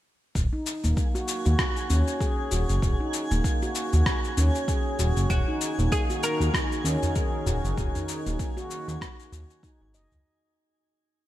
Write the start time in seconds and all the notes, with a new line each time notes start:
0.35 D#1 G#4 G#5, kick, shaker
0.53 D#4
0.66 shaker
0.84 D#1 A#3, shaker
0.97 kick, shaker
1.15 F#4, shaker
1.28 shaker
1.46 D#2 F#4, shaker
1.59 kick, cross-stick, shaker
1.77 shaker
1.90 D#2 C#4, shaker
2.08 shaker
2.21 G#4, kick, shaker
2.51 D#1 F#4, shaker
2.69 F#1, shaker
2.82 D#1, kick, shaker
3.00 D#4
3.14 shaker
3.31 D#1 A#3, shaker
3.44 kick, shaker
3.62 F#4, shaker
3.75 shaker
3.93 D#2 F#4, shaker
4.06 kick, cross-stick, shaker
4.24 shaker
4.37 D#2 C#4, shaker
4.55 shaker
4.68 G#4, kick, shaker
4.99 D#1 F#4, shaker
5.17 F#1, shaker
5.30 D#1 D#3 F#4, kick, shaker
5.46 D#4 F#4
5.53 D#4
5.61 shaker
5.78 D#1 A#3, shaker
5.83 G#4
5.92 G#4, kick, shaker
6.10 F#4, shaker
6.23 A#4, shaker
6.33 A#4
6.40 D#2 F#4, shaker
6.54 kick, cross-stick, shaker
6.72 shaker
6.84 D#2 C#4, shaker
7.03 udu, shaker
7.16 G#4, kick, shaker
7.46 D#1 F#4, udu, shaker
7.64 F#1, shaker
7.78 D#1, kick, shaker
7.95 D#4, udu, shaker
8.09 shaker
8.26 D#1 A#3, shaker
8.39 kick, shaker
8.57 F#4, shaker
8.71 shaker
8.88 D#2 F#4, shaker
9.01 kick, cross-stick, shaker
9.20 shaker
9.32 D#2 F#4, shaker
9.50 shaker
9.63 D#4, kick, shaker
9.81 G#1 D#4
9.94 F#1 D#5, shaker
10.12 C#2, udu, shaker